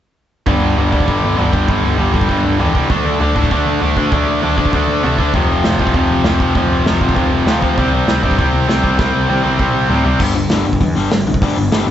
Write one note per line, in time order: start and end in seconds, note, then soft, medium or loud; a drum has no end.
0.46 0.60 G1 medium
0.46 0.76 G2 medium
0.46 0.76 D3 medium
0.46 0.78 G3 medium
0.46 kick loud
0.46 floor tom medium
0.62 0.75 G1 medium
0.62 floor tom medium
0.76 0.91 G1 medium
0.76 0.92 G2 medium
0.76 0.91 D3 medium
0.76 0.90 G3 medium
0.76 floor tom medium
0.92 1.06 D2 medium
0.92 1.05 G2 medium
0.92 1.05 D3 medium
0.92 1.06 G3 medium
0.92 kick medium
0.92 floor tom medium
1.00 kick medium
1.06 1.21 G1 medium
1.06 1.36 G2 medium
1.06 1.37 D3 medium
1.06 1.37 G3 loud
1.06 kick medium
1.06 floor tom medium
1.23 1.36 G1 medium
1.23 floor tom medium
1.37 1.52 G1 medium
1.37 1.52 G2 medium
1.37 1.52 D3 medium
1.37 1.51 G3 medium
1.37 floor tom medium
1.52 1.67 G1 medium
1.52 1.66 G2 medium
1.52 1.67 D3 medium
1.52 1.68 G3 medium
1.52 kick medium
1.52 floor tom medium
1.67 1.82 G1 medium
1.67 1.97 G2 medium
1.67 1.97 D3 medium
1.67 1.98 G3 loud
1.67 kick medium
1.67 floor tom medium
1.84 1.98 G1 medium
1.84 floor tom medium
1.98 2.13 G1 medium
1.98 2.13 G2 medium
1.98 2.13 D3 medium
1.98 2.12 G3 medium
1.98 floor tom medium
2.13 2.28 G1 medium
2.13 2.27 G2 medium
2.13 2.28 D3 medium
2.13 2.29 G3 medium
2.13 kick medium
2.13 floor tom soft
2.21 kick medium
2.28 2.43 G1 medium
2.28 2.58 G2 medium
2.28 2.59 D3 loud
2.28 2.59 G3 medium
2.28 kick medium
2.28 floor tom medium
2.44 2.59 G1 medium
2.44 floor tom soft
2.59 2.74 E2 medium
2.59 2.75 G2 medium
2.59 2.74 D3 medium
2.59 2.73 G3 medium
2.59 floor tom medium
2.75 2.88 C2 medium
2.75 2.90 G2 medium
2.75 2.88 D3 medium
2.75 2.89 G3 loud
2.75 kick medium
2.75 floor tom medium
2.90 3.03 D2 medium
2.90 3.20 D3 medium
2.90 3.20 A3 medium
2.90 3.21 D4 loud
2.90 kick medium
2.90 floor tom medium
3.05 3.19 D2 medium
3.05 floor tom medium
3.20 3.34 D2 medium
3.20 3.36 D3 medium
3.20 3.36 A3 medium
3.20 3.35 D4 medium
3.20 floor tom medium
3.36 3.49 A2 medium
3.36 3.50 D3 medium
3.36 3.52 A3 medium
3.36 3.52 D4 medium
3.36 kick medium
3.36 floor tom medium
3.44 kick medium
3.51 3.64 D2 medium
3.51 3.80 D3 medium
3.51 3.82 A3 medium
3.51 3.82 D4 loud
3.51 kick medium
3.51 floor tom medium
3.66 3.80 D2 medium
3.66 floor tom soft
3.81 3.95 D2 medium
3.81 3.97 D3 medium
3.81 3.97 A3 medium
3.81 3.96 D4 medium
3.81 floor tom medium
3.96 4.10 D2 medium
3.96 4.11 D3 medium
3.96 4.12 A3 medium
3.96 4.12 D4 medium
3.96 kick medium
3.96 floor tom medium
4.12 4.25 D2 medium
4.12 4.42 D3 medium
4.12 4.43 A3 loud
4.12 4.43 D4 medium
4.12 kick medium
4.12 floor tom medium
4.27 4.40 D2 medium
4.27 floor tom medium
4.42 4.56 D2 medium
4.42 4.58 D3 medium
4.42 4.58 A3 medium
4.42 4.56 D4 medium
4.42 floor tom medium
4.57 4.71 D2 medium
4.57 4.73 D3 medium
4.57 4.74 A3 medium
4.57 4.74 D4 medium
4.57 kick medium
4.57 floor tom medium
4.65 kick medium
4.73 4.86 D2 medium
4.73 5.02 D3 medium
4.73 5.04 A3 loud
4.73 5.04 D4 loud
4.73 kick medium
4.73 floor tom medium
4.88 5.01 D2 medium
4.88 floor tom medium
5.03 5.17 C3 medium
5.03 5.19 D3 medium
5.03 5.19 A3 medium
5.03 5.18 D4 medium
5.03 floor tom medium
5.18 5.32 D2 medium
5.18 5.34 D3 medium
5.18 5.35 A3 medium
5.18 5.33 D4 medium
5.18 kick medium
5.18 floor tom medium
5.34 5.47 F1 medium
5.34 5.64 F2 medium
5.34 5.64 C3 medium
5.34 5.66 F3 medium
5.34 kick loud
5.34 floor tom medium
5.49 5.62 F1 medium
5.49 floor tom medium
5.64 5.78 F1 medium
5.64 5.80 F2 medium
5.64 5.80 C3 medium
5.64 5.79 F3 medium
5.64 snare loud
5.64 floor tom medium
5.79 5.93 C2 medium
5.79 5.94 F2 medium
5.79 5.94 C3 medium
5.79 5.95 F3 medium
5.79 kick medium
5.79 floor tom medium
5.87 kick medium
5.94 6.08 F1 medium
5.94 6.25 F2 medium
5.94 6.25 C3 loud
5.94 6.26 F3 loud
5.94 kick medium
5.94 floor tom medium
6.10 6.23 F1 medium
6.10 floor tom medium
6.24 6.38 F1 medium
6.24 6.40 F2 medium
6.24 6.40 C3 medium
6.24 6.39 F3 medium
6.24 snare loud
6.24 floor tom medium
6.40 6.53 F1 medium
6.40 6.54 F2 medium
6.40 6.54 C3 medium
6.40 6.55 F3 medium
6.40 kick medium
6.40 floor tom medium
6.55 6.69 F1 medium
6.55 6.85 F2 medium
6.55 6.85 C3 medium
6.55 6.86 F3 medium
6.55 kick medium
6.55 floor tom medium
6.71 6.84 F1 medium
6.71 floor tom medium
6.86 7.00 F1 medium
6.86 7.01 F2 medium
6.86 7.01 C3 medium
6.86 7.00 F3 medium
6.86 snare loud
6.86 floor tom medium
7.01 7.14 F1 medium
7.01 7.14 F2 medium
7.01 7.15 C3 medium
7.01 7.15 F3 medium
7.01 kick medium
7.01 floor tom medium
7.09 kick medium
7.15 7.30 F1 medium
7.15 7.46 F2 loud
7.15 7.46 C3 loud
7.15 7.47 F3 medium
7.15 kick medium
7.15 floor tom medium
7.32 7.45 F1 medium
7.32 floor tom medium
7.47 7.61 D2 medium
7.47 7.62 F2 medium
7.47 7.62 C3 medium
7.47 7.61 F3 medium
7.47 snare loud
7.47 floor tom medium
7.62 7.76 D2 medium
7.62 7.77 F2 medium
7.62 7.77 C3 medium
7.62 7.76 F3 medium
7.62 kick medium
7.62 floor tom medium
7.77 7.91 C2 medium
7.77 8.08 C3 medium
7.77 8.08 G3 medium
7.77 8.09 C4 medium
7.77 kick medium
7.77 floor tom medium
7.93 8.06 C2 medium
7.93 floor tom medium
8.08 8.21 C2 medium
8.08 8.23 C3 medium
8.08 8.24 G3 medium
8.08 8.22 C4 medium
8.08 snare loud
8.08 floor tom medium
8.23 8.36 G2 medium
8.23 8.37 C3 medium
8.23 8.38 G3 medium
8.23 8.38 C4 medium
8.23 kick medium
8.23 floor tom soft
8.31 kick medium
8.38 8.52 C2 medium
8.38 8.67 C3 medium
8.38 8.68 G3 medium
8.38 8.68 C4 loud
8.38 kick medium
8.38 floor tom medium
8.53 8.67 C2 medium
8.53 floor tom medium
8.68 8.82 C2 medium
8.68 8.83 C3 medium
8.68 8.83 G3 medium
8.68 8.82 C4 medium
8.68 snare loud
8.68 floor tom medium
8.83 8.97 C2 medium
8.83 8.97 C3 medium
8.83 8.98 G3 medium
8.83 8.98 C4 medium
8.83 kick medium
8.83 floor tom medium
8.98 9.12 C2 medium
8.98 9.27 C3 medium
8.98 9.28 G3 medium
8.98 9.29 C4 loud
8.98 kick loud
8.98 snare medium
9.14 9.27 C2 medium
9.29 9.42 C2 medium
9.29 9.44 C3 medium
9.29 9.44 G3 medium
9.29 9.43 C4 medium
9.29 high tom medium
9.44 9.58 C2 medium
9.44 9.58 C3 medium
9.44 9.59 G3 medium
9.44 9.60 C4 medium
9.44 high tom medium
9.59 9.73 C2 medium
9.59 9.88 C3 loud
9.59 9.89 G3 loud
9.59 9.89 C4 loud
9.59 kick medium
9.59 mid tom medium
9.74 9.88 C2 medium
9.89 10.03 A2 medium
9.89 10.05 C3 medium
9.89 10.04 G3 medium
9.89 10.04 C4 medium
9.89 floor tom medium
10.05 10.18 C2 medium
10.05 10.20 C3 medium
10.05 10.19 G3 medium
10.05 10.19 C4 medium
10.05 floor tom medium
10.20 10.34 G1 medium
10.20 10.33 G2 medium
10.20 10.34 D3 medium
10.20 10.35 G3 loud
10.20 kick loud
10.20 crash loud
10.34 10.49 G1 medium
10.34 10.49 G2 medium
10.34 10.49 D3 medium
10.34 open hi-hat medium
10.50 10.64 G1 medium
10.50 10.65 G2 medium
10.50 10.65 D3 medium
10.50 10.65 G3 medium
10.50 snare loud
10.50 open hi-hat medium
10.65 10.79 G1 medium
10.65 10.79 G2 medium
10.65 10.79 D3 medium
10.65 open hi-hat medium
10.73 kick medium
10.80 10.94 E2 medium
10.80 10.94 G2 medium
10.80 10.94 D3 medium
10.80 kick medium
10.80 open hi-hat medium
10.95 11.10 G1 medium
10.95 11.10 G2 medium
10.95 11.10 D3 medium
10.95 11.10 G3 medium
10.95 open hi-hat medium
11.11 11.25 G1 medium
11.11 11.25 G2 medium
11.11 11.25 D3 medium
11.11 snare loud
11.11 open hi-hat medium
11.26 11.40 C2 medium
11.26 11.40 G2 medium
11.26 11.40 D3 medium
11.26 open hi-hat medium
11.34 kick medium
11.42 11.55 D2 loud
11.42 11.56 G2 medium
11.42 11.56 D3 medium
11.42 11.56 G3 loud
11.42 kick loud
11.42 open hi-hat medium
11.57 11.70 G1 medium
11.57 11.70 G2 medium
11.57 11.71 D3 medium
11.57 open hi-hat medium
11.71 11.86 G1 medium
11.71 11.86 G2 medium
11.71 11.86 D3 medium
11.71 11.86 G3 medium
11.71 snare loud
11.71 open hi-hat medium
11.87 11.91 G1 medium
11.87 11.91 G2 medium